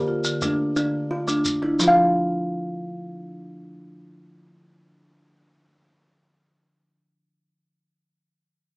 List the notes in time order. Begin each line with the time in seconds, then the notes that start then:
Already playing: D3 G4
0.08 F4
0.24 D3, shekere
0.42 A3 D4, shekere
0.76 D3 D4, shekere
1.11 F4
1.28 A3 D4, shekere
1.45 shekere
1.62 D4 E4
1.79 F3 F4, shekere
1.84 F4 F5